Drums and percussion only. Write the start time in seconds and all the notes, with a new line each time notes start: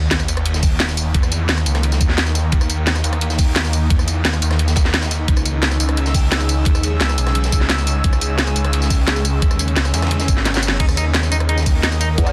0.11 snare, closed hi-hat, ride
0.19 cross-stick, ride, tambourine
0.28 closed hi-hat, ride, tambourine
0.37 cross-stick, closed hi-hat
0.46 closed hi-hat, ride
0.54 snare, tambourine
0.62 kick, closed hi-hat, open hi-hat, tambourine
0.80 snare, closed hi-hat, ride
0.89 tambourine
0.97 closed hi-hat, ride, tambourine
1.14 kick, closed hi-hat, ride
1.23 cross-stick, tambourine
1.32 closed hi-hat, ride, tambourine
1.49 snare, closed hi-hat, ride
1.58 cross-stick, tambourine
1.66 open hi-hat, ride, tambourine
1.74 cross-stick, snare, closed hi-hat
1.83 closed hi-hat, ride
1.92 snare, closed hi-hat, tambourine
2.01 kick, closed hi-hat, ride, tambourine
2.09 snare
2.18 snare, closed hi-hat, ride
2.27 tambourine
2.35 snare, closed hi-hat, ride, tambourine
2.52 kick, closed hi-hat, ride
2.61 cross-stick, ride, tambourine
2.70 closed hi-hat, ride, tambourine
2.87 snare, closed hi-hat, ride
2.95 cross-stick, ride, tambourine
3.04 closed hi-hat, ride, tambourine
3.13 cross-stick, closed hi-hat
3.21 closed hi-hat, ride
3.30 snare, tambourine
3.38 kick, closed hi-hat, open hi-hat, tambourine
3.56 snare, closed hi-hat, ride
3.65 tambourine
3.73 closed hi-hat, ride, tambourine
3.90 kick, closed hi-hat, ride
3.99 cross-stick, tambourine
4.08 closed hi-hat, ride, tambourine
4.25 snare, closed hi-hat, ride
4.33 cross-stick, tambourine
4.42 open hi-hat, ride, tambourine
4.51 cross-stick, snare, closed hi-hat
4.59 closed hi-hat, ride
4.68 snare, closed hi-hat, tambourine
4.76 kick, snare, closed hi-hat, ride, tambourine
4.85 snare, ride
4.94 snare, closed hi-hat, ride
5.02 snare, ride, tambourine
5.11 snare, closed hi-hat, ride, tambourine
5.28 kick, closed hi-hat, ride
5.36 cross-stick, ride, tambourine
5.45 closed hi-hat, ride, tambourine
5.63 snare, closed hi-hat, ride
5.71 cross-stick, ride, tambourine
5.80 closed hi-hat, ride, tambourine
5.89 cross-stick, closed hi-hat
5.97 closed hi-hat, ride
6.06 snare, tambourine
6.14 kick, closed hi-hat, open hi-hat, tambourine
6.31 snare, closed hi-hat, ride
6.40 tambourine
6.49 closed hi-hat, ride, tambourine
6.65 kick, closed hi-hat, ride
6.75 cross-stick, tambourine
6.83 closed hi-hat, ride, tambourine
7.01 snare, closed hi-hat, ride
7.09 cross-stick, tambourine
7.18 open hi-hat, ride, tambourine
7.27 cross-stick, snare, closed hi-hat
7.35 closed hi-hat, ride
7.44 snare, closed hi-hat, tambourine
7.52 kick, closed hi-hat, ride, tambourine
7.61 snare
7.69 snare, closed hi-hat, ride
7.78 tambourine
7.87 snare, closed hi-hat, ride, tambourine
8.04 kick, closed hi-hat, ride
8.13 cross-stick, ride, tambourine
8.21 closed hi-hat, ride, tambourine
8.38 snare, closed hi-hat, ride
8.47 cross-stick, ride, tambourine
8.56 closed hi-hat, ride, tambourine
8.65 cross-stick, closed hi-hat
8.73 closed hi-hat, ride
8.82 snare, tambourine
8.90 kick, closed hi-hat, open hi-hat, tambourine
9.08 snare, closed hi-hat, ride
9.16 tambourine
9.25 closed hi-hat, ride, tambourine
9.42 kick, closed hi-hat, ride
9.51 cross-stick, tambourine
9.59 closed hi-hat, ride, tambourine
9.68 closed hi-hat
9.76 snare, closed hi-hat, ride
9.85 cross-stick, tambourine
9.94 snare, open hi-hat, ride, tambourine
10.02 cross-stick, snare, closed hi-hat, ride
10.07 snare, ride
10.11 closed hi-hat, ride
10.20 snare, closed hi-hat, tambourine
10.28 kick, closed hi-hat, ride, tambourine
10.37 snare
10.45 snare, closed hi-hat, ride
10.54 snare, closed hi-hat, ride, tambourine
10.57 snare
10.63 closed hi-hat, ride, tambourine
10.68 snare, ride
10.80 kick, closed hi-hat, crash, ride
10.88 cross-stick, ride, tambourine
10.97 closed hi-hat, ride, tambourine
11.14 snare, closed hi-hat, ride
11.23 cross-stick, ride, tambourine
11.32 closed hi-hat, ride, tambourine
11.40 cross-stick, closed hi-hat
11.49 closed hi-hat, ride
11.58 snare, tambourine
11.66 kick, closed hi-hat, open hi-hat, tambourine
11.83 snare, closed hi-hat, ride
11.92 tambourine
12.01 closed hi-hat, ride, tambourine
12.18 kick, closed hi-hat, ride
12.27 cross-stick, tambourine